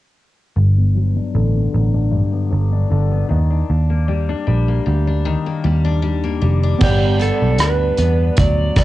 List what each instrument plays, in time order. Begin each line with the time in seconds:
0.56 picked electric bass G1, steel-string acoustic guitar G2
0.78 steel-string acoustic guitar B3
0.95 steel-string acoustic guitar F#3
1.16 steel-string acoustic guitar D4
1.34 picked electric bass A1, steel-string acoustic guitar D3
1.55 steel-string acoustic guitar B3
1.73 picked electric bass A1, steel-string acoustic guitar F#3
1.94 steel-string acoustic guitar D4
2.11 steel-string acoustic guitar G2
2.32 steel-string acoustic guitar B3
2.50 picked electric bass G1, steel-string acoustic guitar F#3
2.72 steel-string acoustic guitar D4
2.90 picked electric bass G1, steel-string acoustic guitar D3
3.11 steel-string acoustic guitar B3
3.29 picked electric bass D#2, steel-string acoustic guitar D#3
3.50 steel-string acoustic guitar D4
3.70 picked electric bass D#2
3.90 steel-string acoustic guitar A#3
4.08 steel-string acoustic guitar G3
4.29 steel-string acoustic guitar D4
4.47 picked electric bass A#1, steel-string acoustic guitar G3
4.68 steel-string acoustic guitar A#3
4.86 picked electric bass D2, steel-string acoustic guitar G3
5.07 steel-string acoustic guitar D4
5.25 steel-string acoustic guitar D#3
5.46 steel-string acoustic guitar A#3
5.64 picked electric bass D#2, steel-string acoustic guitar G3
5.85 steel-string acoustic guitar D4
6.02 steel-string acoustic guitar G3
6.24 steel-string acoustic guitar A#3
6.42 picked electric bass F1, steel-string acoustic guitar G3
6.64 steel-string acoustic guitar D4
6.79 picked electric bass G1, steel-string acoustic guitar G2, synth keys G3 B3 F#5, kick, crash
6.83 electric slide guitar G4, synth keys D5
7.20 steel-string acoustic guitar B3, electric slide guitar A4, closed hi-hat
7.42 picked electric bass B1
7.58 picked electric bass D2, steel-string acoustic guitar D4, electric slide guitar B4, cross-stick, closed hi-hat
7.98 picked electric bass E2, steel-string acoustic guitar B3, closed hi-hat
8.37 picked electric bass D2, steel-string acoustic guitar F#3, electric slide guitar D5, kick, closed hi-hat
8.76 picked electric bass B1, steel-string acoustic guitar B3, electric slide guitar D5, kick, cross-stick, closed hi-hat